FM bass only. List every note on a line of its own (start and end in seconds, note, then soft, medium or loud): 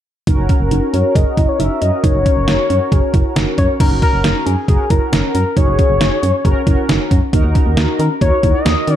0.27 0.36 F#1 loud
0.38 0.48 F#1 medium
0.60 0.70 F#1 medium
0.71 0.81 F#1 loud
0.93 1.03 F#2 loud
1.15 1.25 F#1 loud
1.37 1.47 F#1 loud
1.60 1.69 F#1 loud
1.82 1.91 F#2 medium
2.04 2.13 F#1 loud
2.15 2.24 F#1 medium
2.37 2.46 F#1 medium
2.48 2.57 F#1 loud
2.70 2.79 F#2 loud
2.92 3.01 F#1 loud
3.14 3.23 F#1 medium
3.36 3.45 F#1 loud
3.58 3.67 F#2 loud
3.80 3.89 F#1 loud
3.91 4.00 F#1 loud
4.13 4.22 F#1 medium
4.24 4.33 F#1 loud
4.46 4.56 F#2 loud
4.68 4.78 F#1 loud
4.90 5.00 F#1 loud
5.12 5.22 F#1 loud
5.35 5.44 F#2 medium
5.57 5.66 F#1 loud
5.68 5.77 F#1 medium
5.90 5.99 F#1 medium
6.01 6.10 F#1 loud
6.23 6.32 F#2 loud
6.45 6.54 F#1 loud
6.67 6.76 F#1 loud
6.89 6.98 F#1 loud
7.11 7.20 F#2 medium
7.33 7.42 D#2 loud
7.44 7.53 D#2 medium
7.66 7.75 D#2 medium
7.77 7.86 D#2 loud
7.99 8.08 D#3 loud
8.21 8.31 D#2 loud
8.43 8.53 D#2 loud
8.65 8.75 D#2 loud
8.87 8.96 D#3 medium